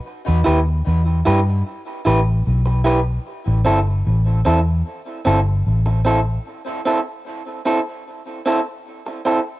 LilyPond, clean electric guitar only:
\new Staff \with { instrumentName = "Clean electric guitar" } { \time 4/4 \key a \dorian \tempo 4 = 75 r8 <e' g' b'>8 r8 <e' g' b'>8 r8 <e' g' b'>8 r8 <e' g' b'>8 | r8 <c' e' a'>8 r8 <c' e' a'>8 r8 <c' e' a'>8 r8 <c' e' a'>8 | r8 <c' e' a'>8 r8 <c' e' a'>8 r8 <c' e' a'>8 r8 <c' e' a'>8 | }